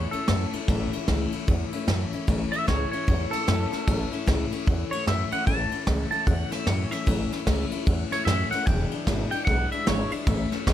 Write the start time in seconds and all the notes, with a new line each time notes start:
Already playing: E3 A3 C#4 E4 C#5
0.11 A3 C#4 E4 A4, muted upright bass stroke, ride
0.28 F#2 A2 E3 A3 C#4 E4, snare, ride
0.53 A3 C#4 E4, muted upright bass stroke, ride
0.68 A1 A2 E3 A3 C#4 E4, kick, ride
0.93 A3 C#4 E4, muted upright bass stroke, ride
1.08 C#2 A2 E3 A3 C#4 E4, kick, snare, ride
1.32 A3 C#4 E4, muted upright bass stroke, ride
1.47 E2 E3 A3 C#4 E4, kick, ride
1.72 A3 C#4 E4, ride
1.87 F#2 A2 E3 A3 C#4 E4, snare, ride
2.12 C#4 E4, muted upright bass stroke, ride
2.16 A3
2.27 A1 A2 E3 A3 C#4 E4, kick, ride
2.52 A3 C#4 E4 E5, ride
2.67 C#2 A2 E3 A3 C#4 E4 C#5, kick, snare, ride
2.91 A3 C#4 E4 C#5, muted upright bass stroke, ride
3.07 E2 E3 A3 C#4 E4, kick, ride
3.31 A3 C#4 E4 A4, muted upright bass stroke, snare, ride
3.47 F#2 A2 E3 A3 C#4 E4, snare, ride
3.71 A3 C#4 E4, muted upright bass stroke, snare, ride
3.87 A1 A2 E3 A3 C#4 E4, kick, ride
4.12 A3 C#4 E4, muted upright bass stroke, ride
4.26 C#2 A2 E3 A3 C#4 E4, kick, snare, ride
4.51 A3 C#4 E4, muted upright bass stroke, ride
4.66 E2 E3 A3 C#4 E4, kick, ride
4.91 A3 C#4 E4 C#5, muted upright bass stroke, ride
5.07 F#2 A2 E3 A3 C#4 E4 E5, snare, ride
5.32 A3 C#4 E4 F#5, muted upright bass stroke, ride
5.47 A1 A2 E3 A3 C#4 E4 A5, kick, ride
5.71 A3 C#4 E4, muted upright bass stroke, ride
5.87 C#2 A2 E3 A3 C#4 E4, kick, snare, ride
6.11 A3 C#4 E4 A5, muted upright bass stroke, ride
6.27 E2 E3 A3 C#4 E4 F#5, kick, ride
6.51 A3 C#4 E4 E5, muted upright bass stroke, snare, ride
6.66 F#2 A2 E3 A3 C#4 E4 C#5, snare, ride
6.91 A3 C#4 E4 E5, muted upright bass stroke, snare, ride
7.06 A1 A2 E3 A3 C#4 E4, kick, ride
7.31 A3 C#4 E4, muted upright bass stroke, snare, ride
7.47 C#2 A2 E3 A3 C#4 E4, kick, snare, ride
7.71 A3 C#4 E4, muted upright bass stroke, ride
7.86 E2 E3 A3 C#4 E4, kick, ride
8.11 A3 C#4 E4 C#5, muted upright bass stroke, snare, ride
8.25 F#2 A2 E3 A3 C#4 E4 E5, snare, ride
8.51 A3 C#4 E4 F#5, muted upright bass stroke, snare, ride
8.66 E1 E2 B2 E3 G#3 D4 E4 G5, kick, ride
8.91 E3 G#3 D4 E4, muted upright bass stroke, ride
9.07 G#1 E2 B2 E3 G#3 D4 E4, kick, snare, ride
9.31 E3 G#3 D4 E4 G5, muted upright bass stroke, ride
9.45 B1 E3 G#3 F#5, kick, snare, ride
9.49 D4 E4
9.72 E3 G#3 D4 E4 E5, ride
9.87 G#1 E2 B2 E3 G#3 D4 E4 C#5, snare, ride
10.11 E3 G#3 D4 E4 E5, ride
10.27 A1 A2 E3 A3 C#4 E4, kick, ride
10.52 A3 C#4 E4, muted upright bass stroke, snare, ride
10.67 C#2 A2 E3 A3 C#4 E4, kick, snare, ride